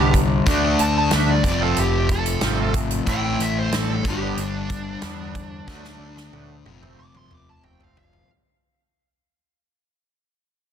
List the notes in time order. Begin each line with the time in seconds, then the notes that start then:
Already playing: C2 G2 D3 G3 G4
0.00 D3 G3 B3 D4
0.14 kick, closed hi-hat
0.46 D2 D3 A3 D4 F#4, kick, closed hi-hat
0.50 D4
0.64 D3 A3 D4 F#4
0.79 D2 A5, closed hi-hat
0.98 A5
1.11 D2 D3 A3 D4 F#4 E5, snare, closed hi-hat
1.31 D5
1.44 F1 F2 C3 D5, kick, closed hi-hat
1.48 F3
1.61 F3 A3 C4 F4 A4
1.76 F1 G4, closed hi-hat
2.09 A4, kick, closed hi-hat
2.26 closed hi-hat
2.41 G#1 F3 A3 C4 F4, snare, closed hi-hat
2.60 F3 A3 C4 F4
2.74 kick, closed hi-hat
2.91 closed hi-hat
3.06 A1 A2 E3 A3 C4 E4 G5, kick, closed hi-hat
3.10 A3
3.23 E3 A3 C4 E4
3.39 A1 E5, closed hi-hat
3.59 C5
3.71 A1 E3 A3 C4 E4, snare, closed hi-hat
3.76 A4
4.04 G1 G2 D3 G3, kick, closed hi-hat
4.10 G4
4.21 D3 G3 B3 D4
4.37 G1 D4, closed hi-hat
4.70 kick, closed hi-hat
5.02 E2 D3 G3 B3 D4, snare, closed hi-hat
5.18 D3 G3 B3 D4
5.35 kick, closed hi-hat
5.68 D2 D3 F#3 A3 D4, kick, snare
5.72 D4
5.84 D3 F#3 A3 D4, snare
5.98 D2
6.17 snare
6.33 D2 D3 F#3 A3 D4, high tom
6.65 F1 F2 C3, high tom
6.70 F3
6.82 C3 F3 A3 C4, mid tom
6.99 F1 D6
7.15 C6, mid tom
7.31 D6, mid tom
7.50 A5
7.63 F1 C3 F3 A3 C4 G5, mid tom
7.80 C3 F3 A3 C4 F5, floor tom
7.97 F5, floor tom
8.13 floor tom